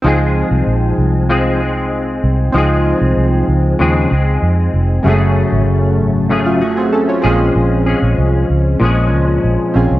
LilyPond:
<<
  \new Staff \with { instrumentName = "Synth keys" } { \time 4/4 \key des \major \tempo 4 = 96 << { r1 | r1 | r2 r16 <a f'>16 <a ges'>16 <c' aes'>16 <des' a'>16 <f' des''>8 r16 | r1 | } \\ { <c' ees' f' aes'>1 | <c' ees' f' aes'>1 | <aes a des' ges' aes'>2 r4. <c' des' f' aes'>8~ | <c' des' f' aes'>2.~ <c' des' f' aes'>8 <c' des' f' aes'>8 | } >> }
  \new Staff \with { instrumentName = "Clean electric guitar" } { \time 4/4 \key des \major <f aes c' aes'>2 <f aes c' aes'>8 <aes c' aes'>4. | <f aes c' aes'>2 <des f aes c' aes'>8 <aes c' aes'>4. | <ges, des ges a des' aes'>2 <ges, des ges a des' aes'>8 <ges a des' aes'>4 <bes, f aes des' aes'>8~ | <bes, f aes des' aes'>8 <aes des' aes'>4. <bes, f aes des' aes'>2 | }
  \new Staff \with { instrumentName = "Fingered electric bass" } { \clef bass \time 4/4 \key des \major des,8. c,16 bes,,8 c,2 c,8 | des,8. c,16 c,8 des,8 ees,8 des,8 f,8 f,,8 | ges,,8. aes,,16 ges,,8 aes,,2 bes,,8 | bes,,8. bes,,16 c,8 des,8 bes,,8 des,8 bes,,16 r16 bes,,16 c,16 | }
>>